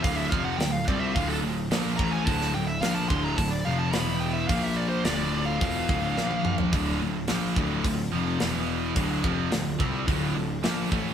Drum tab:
HH |o---o---o---o---|o---o---o---o---|o---o---o-------|o---o---o---o---|
SD |----o-------o---|-o--o-------o---|----o-------o---|----o-------o---|
T1 |----------------|----------------|-------------o--|----------------|
T2 |----------------|----------------|--------------o-|----------------|
FT |----------------|----------------|---------------o|----------------|
BD |o-o---o-o-----o-|o-----o-o-------|o-------o-o-----|o-----o-o-------|

HH |o---o---o---o---|
SD |----o-------o---|
T1 |----------------|
T2 |----------------|
FT |----------------|
BD |o-o---o-o-----o-|